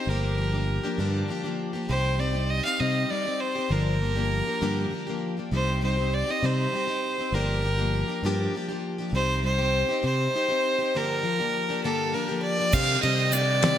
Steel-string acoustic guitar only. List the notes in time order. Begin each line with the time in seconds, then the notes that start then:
0.08 G2 D3 F3 A#3 D4 G4
0.38 F3 A#3 D4 G4
0.53 F3 A#3 D4 G4
0.83 F3 A#3 D4 G4
0.98 G2 D3 F3 A#3 D4 G4
1.28 F3 A#3 D4 G4
1.43 F3 A#3 D4 G4
1.73 F3 A#3 D4 G4
1.89 C3 G3 C4 D#4 G4
2.18 G3 C4 D#4 G4
2.33 C4 D#4 G4
2.63 C4 D#4 G4
2.79 C3 G3 C4 D#4 G4
3.10 G3 C4 D#4 G4
3.25 C4 D#4 G4
3.55 C4 D#4 G4
3.69 G2 D3 F3 A#3 D4 G4
4.00 F3 A#3 D4 G4
4.16 F3 A#3 D4 G4
4.46 F3 A#3 D4 G4
4.61 G2 D3 F3 A#3 D4 G4
4.91 F3 A#3 D4 G4
5.07 F3 A#3 D4 G4
5.37 F3 A#3 D4 G4
5.51 C3 G3 C4 D#4 G4
5.82 G3 C4 D#4 G4
5.97 C4 D#4 G4
6.27 C4 D#4 G4
6.42 C3 G3 C4 D#4 G4
6.72 G3 C4 D#4 G4
6.87 C4 D#4 G4
7.18 C4 D#4 G4
7.33 G2 D3 F3 A#3 D4 G4
7.62 F3 A#3 D4 G4
7.78 F3 A#3 D4 G4
8.08 F3 A#3 D4 G4
8.24 G2 D3 F3 A#3 D4 G4
8.54 F3 A#3 D4 G4
8.68 F3 A#3 D4 G4
8.98 F3 A#3 D4 G4
9.14 C3 G3 C4 D#4 G4
9.44 G3 C4 D#4 G4
9.58 C4 D#4 G4
9.89 C4 D#4 G4
10.03 C3 G3 D#4 G4
10.33 G3 C4 D#4 G4
10.48 C4 D#4 G4
10.79 C4 D#4 G4
10.94 G2 D3 F3 A#3 D4 G4
11.23 F3 A#3 D4 G4
11.39 F3 A#3 D4 G4
11.69 F3 A#3 D4 G4
11.84 G2 D3 F3 A#3 D4 G4
12.13 F3 A#3 D4 G4
12.28 F3 A#3 D4 G4
12.58 F3 A#3 D4 G4
12.73 C3 D#3 G3 C4 D4 G4
13.02 G3 C4 D4 G4
13.32 G3 C4 D4 G4
13.62 C3 D#3 G3 C4 D4 G4